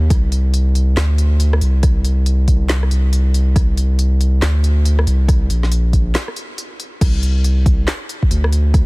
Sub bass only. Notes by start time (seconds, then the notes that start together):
0.10 C2
0.97 D2
1.61 C2
2.91 C2
3.56 C2
4.42 D2
5.07 C2
5.50 A#1
7.01 C2
8.31 D2